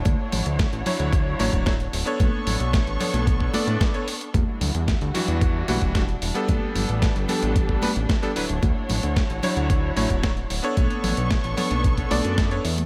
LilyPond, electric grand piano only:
\new Staff \with { instrumentName = "Electric grand piano" } { \time 4/4 \key d \major \tempo 4 = 112 r4. <fis d' e' cis''>4 <fis d' e' cis''>8 <fis d' e' cis''>16 r8 <b d' a' cis''>16~ | <b d' a' cis''>4. <b d' a' cis''>4 <b d' a' d''>8. <b d' a' cis''>16 r8 | r4. <e g d' fis'>4 <e g d' fis'>8 <e g d' fis'>16 r8 <g b d' a'>16~ | <g b d' a'>4. <g b d' a'>4 <g b d' b'>16 r8 <g b d' a'>16 <fis d' e' b'>16 r16 |
r4. <fis d' e' cis''>4 <fis d' e' cis''>8 <fis d' e' cis''>16 r8 <b d' a' cis''>16~ | <b d' a' cis''>4. <b d' a' cis''>4 <b d' a' d''>8. <b d' a' cis''>16 r8 | }